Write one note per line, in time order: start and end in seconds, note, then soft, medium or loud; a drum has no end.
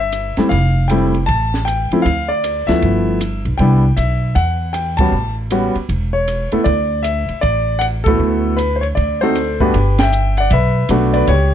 0.00 0.33 G1 medium
0.00 0.46 E5 medium
0.12 hi-hat pedal medium
0.12 ride soft
0.37 0.50 G3 soft
0.37 0.50 A3 soft
0.37 0.51 C4 soft
0.37 0.50 E4 medium
0.37 muted upright bass stroke soft
0.37 snare soft
0.37 ride soft
0.49 1.24 F1 medium
0.49 0.86 F5 medium
0.49 kick soft
0.49 ride soft
0.88 1.13 G3 medium
0.88 1.12 A3 soft
0.88 1.12 C4 soft
0.88 1.13 E4 medium
0.88 1.29 G5 medium
0.88 hi-hat pedal medium
0.88 ride medium
1.14 ride soft
1.26 1.87 A1 medium
1.26 1.67 A5 medium
1.26 kick soft
1.26 ride soft
1.54 snare soft
1.65 2.06 G5 medium
1.65 hi-hat pedal soft
1.65 ride medium
1.91 2.05 F3 medium
1.91 2.05 A3 soft
1.91 2.05 C4 soft
1.91 2.05 E4 medium
1.91 muted upright bass stroke soft
1.91 ride soft
2.02 2.64 D2 medium
2.02 2.29 F5 medium
2.02 kick soft
2.02 ride soft
2.28 2.69 D5 medium
2.44 hi-hat pedal medium
2.44 ride medium
2.67 2.81 D2 medium
2.67 3.18 F3 medium
2.67 3.18 A3 soft
2.67 3.18 B3 soft
2.67 3.19 E4 medium
2.67 3.41 E5 medium
2.67 snare soft
2.67 ride soft
2.82 3.41 G1 medium
2.82 kick soft
2.82 ride soft
3.21 hi-hat pedal medium
3.21 ride medium
3.45 3.58 B1 medium
3.45 ride soft
3.58 3.95 C2 medium
3.58 3.82 G3 soft
3.58 3.82 B3 soft
3.58 3.82 D4 soft
3.58 3.82 E4 medium
3.58 3.98 G5 medium
3.58 kick soft
3.58 ride medium
3.97 4.33 B1 medium
3.97 4.37 E5 medium
3.97 hi-hat pedal soft
3.97 ride medium
4.35 5.09 E2 medium
4.35 4.71 F#5 medium
4.35 kick soft
4.35 ride soft
4.73 4.99 G5 medium
4.73 hi-hat pedal soft
4.73 ride medium
4.97 5.12 G3 soft
4.97 5.12 B3 soft
4.97 5.12 C#4 soft
4.97 5.12 F#4 medium
4.97 5.34 A5 medium
4.97 kick medium
4.97 ride medium
5.12 5.71 A1 medium
5.51 5.74 G3 medium
5.51 5.74 B3 medium
5.51 5.74 C#4 soft
5.51 5.74 F#4 medium
5.51 hi-hat pedal soft
5.51 ride medium
5.75 muted upright bass stroke soft
5.75 ride soft
5.89 6.48 E1 medium
5.89 kick soft
5.89 ride medium
6.13 6.50 C#5 medium
6.28 hi-hat pedal soft
6.28 ride medium
6.52 6.65 A3 medium
6.52 6.65 B3 soft
6.52 6.65 E4 medium
6.52 6.65 A4 medium
6.52 muted upright bass stroke soft
6.52 ride soft
6.64 7.25 D2 medium
6.64 7.01 D5 medium
6.64 kick soft
6.64 ride soft
7.03 7.40 E5 medium
7.03 hi-hat pedal soft
7.03 ride medium
7.29 muted upright bass stroke soft
7.29 ride soft
7.41 8.16 A1 medium
7.41 7.82 D5 medium
7.41 kick soft
7.41 ride soft
7.79 7.85 F#5 medium
7.79 hi-hat pedal soft
7.79 ride medium
8.04 8.57 A3 medium
8.04 8.56 B3 medium
8.04 8.57 E4 soft
8.04 8.57 F#4 medium
8.04 8.54 A4 medium
8.04 kick medium
8.04 ride medium
8.19 8.93 D2 medium
8.57 8.75 B4 medium
8.57 hi-hat pedal soft
8.57 ride medium
8.76 8.83 C5 soft
8.81 8.86 C#5 medium
8.81 ride soft
8.95 9.70 D2 medium
8.95 9.55 D5 medium
8.95 kick soft
8.95 ride soft
9.21 9.35 A3 medium
9.21 9.35 C4 medium
9.21 9.35 D#4 soft
9.21 9.35 F#4 medium
9.21 9.58 A4 medium
9.21 9.61 C5 medium
9.35 hi-hat pedal soft
9.35 ride medium
9.60 9.73 G2 medium
9.60 9.73 A3 medium
9.60 9.73 B3 medium
9.60 9.73 D4 medium
9.60 9.73 F#4 medium
9.60 9.97 G4 soft
9.60 9.96 B4 medium
9.60 kick soft
9.74 10.47 G1 medium
9.74 kick soft
9.74 ride medium
9.98 10.36 E5 medium
9.98 10.35 G5 loud
9.98 snare medium
9.98 ride medium
10.12 hi-hat pedal medium
10.37 10.52 D5 medium
10.37 10.50 F#5 medium
10.37 ride soft
10.51 10.87 B1 medium
10.51 10.88 B4 medium
10.51 10.87 E5 medium
10.51 kick soft
10.51 ride medium
10.89 11.25 B1 medium
10.89 11.28 A3 medium
10.89 11.28 B3 medium
10.89 11.28 D4 medium
10.89 11.28 F#4 medium
10.89 hi-hat pedal medium
10.89 ride medium
11.14 11.28 B4 medium
11.14 11.28 D5 medium
11.14 ride soft
11.27 11.54 C#2 medium
11.27 11.54 G4 medium
11.27 11.54 C#5 medium
11.27 kick soft
11.27 ride medium